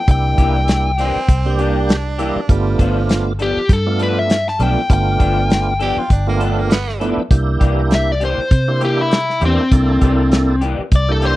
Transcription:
0.08 C2 G3 A#3 D4 E4 G5, kick, closed hi-hat
0.38 C2 E3 A#3 D4 G4, kick, closed hi-hat
0.68 snare, closed hi-hat
0.98 E3 A#3 C4 D4 G4, closed hi-hat
1.16 muted fingered electric bass stroke
1.28 C2, kick, closed hi-hat
1.45 G3 A#3 D4 G4
1.59 E3 A#3 D4 G4, closed hi-hat
1.89 snare, closed hi-hat
2.18 E3 G3 A#3 D4 E4 G4, closed hi-hat
2.36 muted fingered electric bass stroke
2.49 G1 G3 A3 B3 D4 F4, kick, closed hi-hat
2.79 G1 F3 B3 D4 A4, kick, closed hi-hat
3.09 snare, closed hi-hat
3.39 F3 B3 D4 G4 A4, closed hi-hat
3.57 muted fingered electric bass stroke
3.69 G2 A4, kick, closed hi-hat
3.86 A3 B3 D4 F4
3.99 F3 B3 D4 A4 B4, closed hi-hat
4.19 E5
4.30 snare, closed hi-hat
4.48 A5, snare
4.59 B1 F3 A3 B3 D4 F4 A4 G5, closed hi-hat
4.90 G1 A3 B3 D4 F4 G5, kick, closed hi-hat
5.19 G1 F3 B3 D4 A4, kick, closed hi-hat
5.50 snare, closed hi-hat
5.80 F3 B3 D4 G4 A4, closed hi-hat
5.97 F4, muted fingered electric bass stroke
6.10 G1 D4, kick, closed hi-hat
6.27 A3 A#3 B3 D4 F4
6.40 F3 B3 D4 A4, closed hi-hat
6.59 A#3
6.71 B3, snare, closed hi-hat
6.89 snare
7.00 F3 A3 B3 D4 E4 A4, closed hi-hat
7.17 muted fingered electric bass stroke
7.31 C2 A#3 D4 E4 G4, kick, closed hi-hat
7.60 C2 E3 A#3 D4 G4, kick, closed hi-hat
7.91 snare, closed hi-hat
7.95 E5
8.12 D5
8.20 E3 A#3 D4 G4, closed hi-hat
8.25 C5
8.38 muted fingered electric bass stroke
8.51 C3, kick, closed hi-hat
8.68 A#3 D4 E4 G4
8.81 E3 A#3 D4 G4, closed hi-hat
8.85 G4
9.01 E4
9.11 snare, closed hi-hat
9.30 snare
9.41 E2 E3 A#3 D4 E4 G4, closed hi-hat
9.45 C4
9.72 C2 A#3 D4 E4 A4, kick, closed hi-hat
10.01 C2 E3 A#3 D4 G4, kick, closed hi-hat
10.32 snare, closed hi-hat
10.61 E3 A#3 D4 G4, closed hi-hat
10.79 muted fingered electric bass stroke
10.92 C2 D5, kick, closed hi-hat
11.09 A#3 D4 E4 G4 A4
11.21 E3 A#3 D4 G4 C5, closed hi-hat

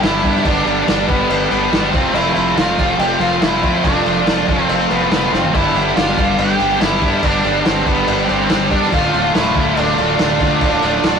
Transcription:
Already playing: B3 G4 D5
0.02 G1 G3 B3 D4 E4 G4, snare, cowbell, crash
0.23 G2 G3 B3 D4 G4, kick, cowbell, crash
0.36 snare
0.44 G1 G2 D3 G3 B3 D4 G4, kick, cowbell, crash
0.65 G1 G3 B3 D4 G4, crash
0.86 G1 G2 D3 G3 B3 D4 G4, snare, cowbell, crash
1.08 G1 G3 B3 D4 G4, kick, cowbell, crash
1.30 G1, cowbell, crash
1.51 G1 G3 B3 D4 G4, crash
1.71 G1 G3 B3 D4 G4, snare, cowbell, crash
1.92 F1 F2 C3 F3 A3 C4 F4 C5, kick, cowbell, crash
2.13 F1 F2 C3 F3 A3 C4 E4 F4, cowbell, crash
2.34 F1 A3 C4 E4 F4, crash
2.39 F3
2.57 F1 F2 C3 F3 A3 C4 F4, snare, cowbell, crash
2.78 F1 F3 A3 C4 F4, kick, cowbell, crash
2.99 F1 G4, cowbell, crash
3.20 F1 A3 C4 F4, crash
3.24 F3
3.41 F1 F3 A3 C4 E4 F4, snare, cowbell, crash
3.62 F2 F3 A3 C4 F4, kick, cowbell, crash
3.83 F1 F2 C3 F3 A3 C4 D4 F4, kick, cowbell, crash
4.04 F1 F3 A3 C4 F4, crash
4.25 F1 F2 C3 F3 A3 C4 F4, snare, cowbell, crash
4.48 F1 F3 A3 C4 F4, kick, cowbell, crash
4.69 F1, cowbell, crash
4.90 F1 F3 A3 B3 C4 F4, crash
5.10 F1 F3 A3 B3 C4 F4, snare, cowbell, crash
5.31 F1 F3 A3 C4 F4, snare, cowbell
5.44 floor tom
5.53 G1 G2 D3 G3 B3 D4 E4 G4 B4, kick, cowbell, crash
5.74 G1 G3 B3 D4 G4, crash
5.95 G1 G2 D3 G3 B3 D4 F4 G4, snare, cowbell, crash
6.17 G1 G3 B3 D4 G4, kick, cowbell, crash
6.38 G1 G4, cowbell, crash
6.59 G1 G3 B3 D4 G4, crash
6.80 G1 G3 B3 D4 E4 G4, snare, cowbell, crash
7.02 G2 G3 B3 D4 G4, kick, cowbell, crash
7.22 G1 G2 D3 G3 B3 D4 G4, kick, cowbell, crash
7.44 G1 G3 B3 D4 G4, crash
7.64 G1 G2 D3 G3 B3 C4 D4 G4, snare, cowbell, crash
7.86 G1 G3 B3 D4 G4, kick, cowbell, crash
8.07 G1, cowbell, crash
8.28 G1 G3 B3 C4 D4 G4, crash
8.49 G1 G3 B3 D4 G4, snare, cowbell, crash
8.70 G2 G3 B3 D4 G4, kick, cowbell, crash
8.83 snare
8.91 D1 D2 A2 D3 F3 A3 D4 F4 A4, kick, cowbell, crash
9.12 D1 D3 A3 F4, crash
9.32 D1 D2 A2 D3 A3 E4 F4, snare, cowbell, crash
9.55 D1 D3 A3 F4, kick, cowbell, crash
9.77 D1 D4, cowbell, crash
9.96 D1 D3 A3 F4, crash
10.18 D1 A2 D3 A3 F4, snare, cowbell, crash
10.40 D2 D3 A3 F4, kick, cowbell, crash
10.61 D1 D2 A2 D3 A3 F4, kick, cowbell, crash
10.81 D1 D3 A3 F4, crash
11.02 D1 D2 A2 D3 A3 F4, snare, cowbell, crash

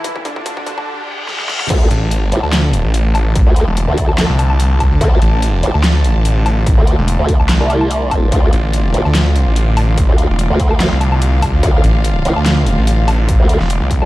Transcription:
Already playing: D2 D3 E3 A3 E4 G4, riser
0.04 kick, closed hi-hat
0.16 kick
0.25 D3 D4, kick, closed hi-hat
0.36 kick
0.46 kick, closed hi-hat
0.57 kick
0.67 kick, closed hi-hat
0.78 kick, low woodblock
0.87 reverse cymbal
1.29 snare
1.40 snare
1.49 snare
1.60 snare
1.70 D2 D3 A3 F4 D5 A5, kick, closed hi-hat, crash
1.91 A1, closed hi-hat
2.11 closed hi-hat
2.32 A1, closed hi-hat
2.43 D2, low woodblock
2.53 snare, clap, closed hi-hat
2.73 closed hi-hat
2.85 A1
2.94 closed hi-hat
3.15 closed hi-hat, low woodblock
3.36 kick, closed hi-hat
3.47 D2
3.56 closed hi-hat
3.67 E1
3.77 closed hi-hat
3.88 D2
3.98 kick, closed hi-hat
4.09 low woodblock
4.18 snare, clap, closed hi-hat
4.29 C2
4.39 closed hi-hat, low woodblock
4.50 low woodblock
4.60 closed hi-hat
4.80 kick, closed hi-hat, low woodblock
4.91 D2
5.01 D2, kick, closed hi-hat
5.22 A1, closed hi-hat
5.42 closed hi-hat
5.63 A1, closed hi-hat
5.74 D2, low woodblock
5.84 snare, clap, closed hi-hat
6.04 closed hi-hat
6.16 A1
6.25 closed hi-hat
6.46 closed hi-hat, low woodblock
6.67 kick, closed hi-hat
6.78 D2
6.87 closed hi-hat
6.98 E1
7.08 closed hi-hat
7.19 D2
7.29 kick, closed hi-hat
7.40 C2, low woodblock
7.49 snare, clap, closed hi-hat
7.61 C2
7.70 closed hi-hat, low woodblock
7.81 low woodblock
7.91 closed hi-hat
8.11 kick, closed hi-hat, low woodblock
8.32 D2 F5, kick, closed hi-hat
8.53 A1, closed hi-hat
8.73 closed hi-hat
8.94 A1, closed hi-hat
9.05 D2, low woodblock
9.15 snare, clap, closed hi-hat
9.36 closed hi-hat
9.47 A1
9.56 closed hi-hat
9.77 open hi-hat, low woodblock
9.98 kick, closed hi-hat
10.09 D2
10.18 closed hi-hat
10.29 E1
10.39 closed hi-hat
10.50 D2
10.60 kick, closed hi-hat
10.71 low woodblock
10.80 snare, clap, closed hi-hat
10.91 C2
11.01 closed hi-hat, low woodblock
11.12 low woodblock
11.22 closed hi-hat
11.42 kick, open hi-hat, low woodblock
11.53 D2
11.63 D2, kick, closed hi-hat
11.84 A1, closed hi-hat
12.04 closed hi-hat
12.25 A1, closed hi-hat
12.36 D2, low woodblock
12.46 snare, clap, closed hi-hat
12.67 closed hi-hat
12.78 A1
12.87 closed hi-hat
13.08 open hi-hat, low woodblock
13.29 kick, closed hi-hat
13.40 D2
13.49 closed hi-hat
13.60 E1, snare
13.70 closed hi-hat
13.81 C2
13.91 kick, closed hi-hat
14.02 D2, low woodblock

